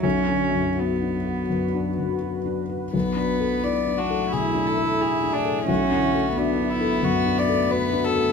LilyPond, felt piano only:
\new Staff \with { instrumentName = "Felt piano" } { \time 4/4 \key b \dorian \tempo 4 = 87 \tuplet 3/2 { b,,8 d8 fis,8 fis'8 d'8 fis'8 fis,8 d'8 fis,8 fis'8 d'8 fis'8 } | \tuplet 3/2 { b,,8 d'8 a'8 e'8 d'8 a'8 b,8 d'8 a'8 e'8 d'8 a'8 } | \tuplet 3/2 { b,,8 d8 a'8 fis'8 d'8 a'8 fis,8 d'8 a'8 fis'8 d'8 a'8 } | }